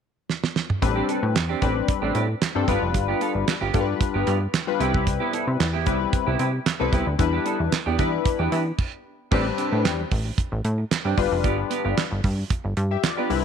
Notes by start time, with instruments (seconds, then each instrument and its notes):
0.29 snare
0.43 snare
0.56 snare
0.70 mid tom
0.82 analog synth bass A1, analog polysynth G3 C4 D4 B4, muted clean electric guitar stroke, kick, closed hi-hat
0.96 clean electric guitar C4 D4 G4
1.08 clean electric guitar C4 D4 A4, closed hi-hat
1.23 analog synth bass A2, muted clean electric guitar stroke
1.35 analog synth bass E2, muted clean electric guitar stroke, snare, clap, closed hi-hat
1.49 clean electric guitar C4 D4 G4
1.61 analog synth bass A1, analog polysynth G3 C4 D4 B4, clean electric guitar C4 D4 G4, kick, closed hi-hat
1.76 muted clean electric guitar stroke
1.88 muted clean electric guitar stroke, kick, closed hi-hat
2.02 analog synth bass A1, clean electric guitar C4 D4 G4
2.15 analog synth bass A2, clean electric guitar C4 D4 G4, closed hi-hat
2.29 muted clean electric guitar stroke
2.41 muted clean electric guitar stroke, snare, clap, closed hi-hat
2.55 analog synth bass G2, analog polysynth G3 C4 D4 A4, clean electric guitar C4 D4 A4
2.67 analog synth bass G1, analog polysynth G3 D4 F4 B4, clean electric guitar B3 F4 G4, kick, closed hi-hat
2.82 analog synth bass F1, muted clean electric guitar stroke
2.94 analog synth bass G1, muted clean electric guitar stroke, kick, closed hi-hat
3.08 clean electric guitar B3 F4 G4
3.21 clean electric guitar B3 F4 A4, closed hi-hat
3.35 analog synth bass G1, muted clean electric guitar stroke
3.47 muted clean electric guitar stroke, snare, clap, closed hi-hat
3.61 analog synth bass G1, clean electric guitar B3 F4 G4
3.74 analog synth bass G2, analog polysynth G3 D4 F4 A4, clean electric guitar B3 F4 G4, kick, closed hi-hat
3.81 analog polysynth B4
3.88 muted clean electric guitar stroke
4.00 muted clean electric guitar stroke, kick, closed hi-hat
4.14 analog synth bass G1, clean electric guitar B3 F4 G4
4.27 analog synth bass G2, clean electric guitar B3 F4 G4, closed hi-hat
4.41 muted clean electric guitar stroke
4.54 muted clean electric guitar stroke, snare, clap, closed hi-hat
4.67 analog polysynth G3 D4 F4 B4, muted clean electric guitar stroke
4.79 analog synth bass C2, analog polysynth G3 C4 E4 B4, clean electric guitar B3 E4 G4, closed hi-hat
4.94 clean electric guitar B3 E4 G4, kick
5.06 muted clean electric guitar stroke, kick, closed hi-hat
5.20 clean electric guitar B3 E4 G4
5.33 clean electric guitar B3 E4 A4, closed hi-hat
5.47 analog synth bass C3, muted clean electric guitar stroke
5.60 analog synth bass E2, muted clean electric guitar stroke, snare, clap, closed hi-hat
5.73 clean electric guitar B3 E4 G4
5.86 analog synth bass C2, analog polysynth G3 C4 E4 B4, clean electric guitar B3 E4 G4, kick, closed hi-hat
6.00 muted clean electric guitar stroke
6.13 muted clean electric guitar stroke, kick, closed hi-hat
6.27 analog synth bass C2, clean electric guitar B3 E4 G4
6.39 analog synth bass C3, clean electric guitar B3 E4 G4, closed hi-hat
6.53 muted clean electric guitar stroke
6.66 muted clean electric guitar stroke, snare, clap, closed hi-hat
6.80 analog synth bass C2, analog polysynth G3 C4 E4 B4, clean electric guitar B3 E4 A4
6.92 analog synth bass C2, clean electric guitar B3 E4 G4, kick, closed hi-hat
7.06 analog synth bass D2, muted clean electric guitar stroke
7.18 analog synth bass E2, analog polysynth G3 D4 E4 B4, kick, closed hi-hat
7.33 clean electric guitar B3 D4 G4
7.45 clean electric guitar B3 D4 A4, closed hi-hat
7.59 analog synth bass E2, muted clean electric guitar stroke
7.72 muted clean electric guitar stroke, snare, clap, closed hi-hat
7.86 analog synth bass E2, clean electric guitar B3 D4 G4
7.98 analog synth bass E3, analog polysynth G3 D4 E4 B4, clean electric guitar B3 D4 G4, kick, closed hi-hat
8.12 muted clean electric guitar stroke
8.25 muted clean electric guitar stroke, kick, closed hi-hat
8.39 analog synth bass E2, clean electric guitar B3 D4 G4
8.51 analog synth bass E3, clean electric guitar B3 D4 G4, closed hi-hat
8.66 muted clean electric guitar stroke
8.79 kick, crash
9.31 analog synth bass A1, analog polysynth G3 C4 D4 B4, clean electric guitar C4 D4 G4, kick, crash
9.45 muted clean electric guitar stroke
9.58 clean electric guitar C4 D4 G4, closed hi-hat
9.72 analog synth bass A2, clean electric guitar C4 D4 G4
9.84 analog synth bass E2, muted clean electric guitar stroke, snare, clap, closed hi-hat
9.98 muted clean electric guitar stroke
10.11 analog synth bass A1, kick, open hi-hat
10.25 muted clean electric guitar stroke
10.38 muted clean electric guitar stroke, kick, closed hi-hat
10.52 analog synth bass A1, muted clean electric guitar stroke
10.65 analog synth bass A2, closed hi-hat
10.78 muted clean electric guitar stroke
10.91 muted clean electric guitar stroke, snare, clap, closed hi-hat
11.05 analog synth bass G2, clean electric guitar C4 D4 G4
11.17 analog synth bass G1, analog polysynth G3 D4 F4 B4, muted clean electric guitar stroke, kick, open hi-hat
11.32 analog synth bass F1, muted clean electric guitar stroke
11.44 analog synth bass G1, clean electric guitar B3 F4 G4, kick, closed hi-hat
11.58 muted clean electric guitar stroke
11.70 clean electric guitar B3 F4 G4, closed hi-hat
11.84 analog synth bass G1, clean electric guitar B3 F4 G4
11.97 muted clean electric guitar stroke, snare, clap, closed hi-hat
12.11 analog synth bass G1, muted clean electric guitar stroke
12.24 analog synth bass G2, kick, open hi-hat
12.38 muted clean electric guitar stroke
12.50 muted clean electric guitar stroke, kick, closed hi-hat
12.64 analog synth bass G1, muted clean electric guitar stroke
12.77 analog synth bass G2, closed hi-hat
12.91 analog polysynth G4 E5, muted clean electric guitar stroke
13.03 analog polysynth F4 D5, muted clean electric guitar stroke, snare, clap, closed hi-hat
13.17 clean electric guitar B3 F4 G4, analog polysynth D4 B4
13.30 analog synth bass C2, analog polysynth G3 C4 E4 B4, muted clean electric guitar stroke, open hi-hat